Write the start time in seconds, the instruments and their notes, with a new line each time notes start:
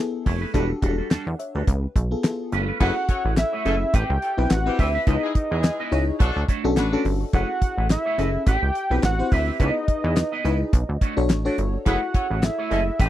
Already playing: fm electric piano B3 E4 G#4
0.00 fm electric piano A4
0.13 muted clean electric guitar stroke
0.25 analog synth bass F1, clean electric guitar A3 E4 G#4 C#5, kick, open hi-hat
0.41 clean electric guitar A3 E4 G#4 B4
0.54 analog synth bass E1, clean electric guitar G3 D4 F#4 B4, fm electric piano D4 F#4 G4 A4, kick, closed hi-hat
0.69 muted clean electric guitar stroke
0.82 analog synth bass E1, clean electric guitar G3 D4 F#4 A4, fm electric piano D4 F#4 G4 G#4, kick, closed hi-hat
0.89 fm electric piano A4
0.98 clean electric guitar G3 D4 F#4 A4
1.10 analog synth bass E2, clean electric guitar G3 D4 F#4 A4, snare, clap, closed hi-hat
1.26 analog synth bass E2, fm electric piano D5 F#5, muted clean electric guitar stroke
1.39 fm electric piano C#5 E5, muted clean electric guitar stroke, closed hi-hat
1.54 analog synth bass D2, clean electric guitar G3 D4 F#4 A4, fm electric piano G4 B4
1.67 analog synth bass C#2, muted clean electric guitar stroke, kick, closed hi-hat
1.83 muted clean electric guitar stroke
1.96 analog synth bass B1, kick, closed hi-hat
2.11 fm electric piano B3 F4 G#4 A4, muted clean electric guitar stroke
2.23 fm electric piano B3 E4 G#4 A4, muted clean electric guitar stroke, snare, clap, closed hi-hat
2.30 fm electric piano F4
2.39 muted clean electric guitar stroke
2.52 analog synth bass G1, clean electric guitar A3 C#4 F4 B4, closed hi-hat
2.68 clean electric guitar A3 C#4 F4 B4
2.80 analog synth bass F#1, clean electric guitar A3 E4 G#4 C#5, horn section B3 E4 G#4 B4, fm electric piano C#4 E4 G#4 A4, analog synth lead F#5, kick, crash
2.96 muted clean electric guitar stroke
3.09 horn section C#4 A4 C#5, muted clean electric guitar stroke, kick, closed hi-hat
3.24 analog synth bass A1, clean electric guitar A3 E4 G#4 C#5
3.37 analog synth lead E5, muted clean electric guitar stroke, snare, clap, closed hi-hat
3.53 clean electric guitar A3 E4 G#4 C#5
3.65 analog synth bass F#1, clean electric guitar A3 E4 G#4 D#5, horn section A3 C#4 E4 A4, fm electric piano C#4 E4 G#4 A4, closed hi-hat
3.81 muted clean electric guitar stroke
3.93 analog synth bass A1, clean electric guitar C4 G4 B4 E5, analog synth lead G5, kick, closed hi-hat
4.09 analog synth bass C#2, muted clean electric guitar stroke
4.22 muted clean electric guitar stroke, closed hi-hat
4.37 analog synth bass B1, fm electric piano C4 E4 G4 B4, clean electric guitar C4 G4 B4 E5
4.50 analog synth bass A1, analog synth lead F#5, muted clean electric guitar stroke, snare, clap, closed hi-hat
4.66 horn section G3 C4 E4 G4, fm electric piano C4 E4 G4 B4, muted clean electric guitar stroke
4.78 analog synth bass D2, clean electric guitar C4 G4 B4 E5, analog synth lead E5, kick, open hi-hat
4.94 clean electric guitar C4 G4 B4 E5
5.07 analog synth bass C#2, clean electric guitar B3 E4 G#4 D#5, fm electric piano D#4 E4 G#4 B4, analog synth lead D#5, kick, closed hi-hat
5.23 horn section G#3 E4 G#4, muted clean electric guitar stroke
5.35 muted clean electric guitar stroke, kick, closed hi-hat
5.51 analog synth bass E2, horn section G#3 E4 G#4, clean electric guitar B3 E4 G#4 D#5
5.64 snare, clap, closed hi-hat
5.79 clean electric guitar B3 E4 G#4 D#5
5.92 analog synth bass C#2, clean electric guitar B3 E4 G#4 D#5, fm electric piano D#4 E4 G#4 C#5, closed hi-hat
6.20 analog synth bass B1, horn section A3 D4 F#4 A4, kick, closed hi-hat
6.36 analog synth bass D2, muted clean electric guitar stroke
6.48 clean electric guitar A3 D4 F#4 C#5, kick, closed hi-hat
6.64 analog synth bass B1, fm electric piano C#4 D4 F#4 A4, muted clean electric guitar stroke
6.76 analog synth bass A1, horn section B3 D4 F#4 B4, muted clean electric guitar stroke, snare, clap, closed hi-hat
6.92 clean electric guitar A3 D4 F#4 D5, fm electric piano C#4 D4 F#4 A4
7.05 analog synth bass G1, muted clean electric guitar stroke, open hi-hat
7.21 muted clean electric guitar stroke
7.33 analog synth bass F#1, clean electric guitar A3 E4 G#4 C#5, fm electric piano C#4 E4 G#4 A4, analog synth lead F#5, kick, closed hi-hat
7.49 muted clean electric guitar stroke
7.61 muted clean electric guitar stroke, kick, closed hi-hat
7.77 analog synth bass A1, clean electric guitar A3 E4 G#4 C#5
7.90 analog synth lead E5, snare, clap, closed hi-hat
8.05 clean electric guitar A3 E4 G#4 C#5
8.18 analog synth bass F#1, clean electric guitar A3 E4 G#4 D#5, fm electric piano C#4 E4 G#4 A4, closed hi-hat
8.34 muted clean electric guitar stroke
8.46 analog synth bass A1, clean electric guitar C4 G4 B4 E5, analog synth lead G5, kick, closed hi-hat
8.62 analog synth bass C#2, muted clean electric guitar stroke
8.74 muted clean electric guitar stroke, closed hi-hat
8.90 analog synth bass B1, fm electric piano C4 E4 G4 B4, clean electric guitar C4 G4 B4 E5
9.03 analog synth bass A1, analog synth lead F#5, muted clean electric guitar stroke, snare, clap, closed hi-hat
9.19 fm electric piano C4 E4 G4 C5, muted clean electric guitar stroke
9.31 analog synth bass D2, clean electric guitar C4 G4 B4 E5, analog synth lead E5, kick, open hi-hat
9.47 clean electric guitar C4 G4 B4 E5
9.59 analog synth bass C#2, clean electric guitar B3 E4 G#4 D#5, fm electric piano D#4 E4 G#4 B4, analog synth lead D#5, kick, closed hi-hat
9.76 muted clean electric guitar stroke
9.88 muted clean electric guitar stroke, kick, closed hi-hat
10.04 analog synth bass E2, clean electric guitar B3 E4 G#4 D#5
10.17 snare, clap, closed hi-hat
10.32 clean electric guitar B3 E4 G#4 D#5
10.44 analog synth bass C#2, clean electric guitar B3 E4 G#4 D#5, fm electric piano D#4 E4 G#4 B4, closed hi-hat
10.60 muted clean electric guitar stroke
10.73 analog synth bass B1, kick, closed hi-hat
10.89 analog synth bass D2, muted clean electric guitar stroke
11.01 clean electric guitar A3 D4 F#4 C#5, kick, closed hi-hat
11.17 analog synth bass B1, fm electric piano D4 F#4 A4 C#5, muted clean electric guitar stroke
11.29 analog synth bass A1, muted clean electric guitar stroke, snare, clap, closed hi-hat
11.45 clean electric guitar A3 D4 F#4 D5, fm electric piano D4 F#4 A4 C#5
11.58 analog synth bass G1, closed hi-hat
11.73 muted clean electric guitar stroke
11.86 analog synth bass F#1, clean electric guitar A3 E4 G#4 C#5, horn section B3 E4 G#4 B4, fm electric piano E4 G#4 A4 C#5, analog synth lead F#5, kick, closed hi-hat
12.02 muted clean electric guitar stroke
12.14 horn section C#4 A4 C#5, muted clean electric guitar stroke, kick, closed hi-hat
12.30 analog synth bass A1, clean electric guitar A3 E4 G#4 C#5
12.43 analog synth lead E5, muted clean electric guitar stroke, snare, clap, closed hi-hat
12.58 clean electric guitar A3 E4 G#4 C#5
12.71 analog synth bass F#1, clean electric guitar A3 E4 G#4 D#5, horn section A3 C#4 E4 A4, fm electric piano E4 G#4 A4 D#5, closed hi-hat
12.87 muted clean electric guitar stroke
12.99 analog synth bass A1, clean electric guitar C4 G4 B4 E5, analog synth lead G5, kick, closed hi-hat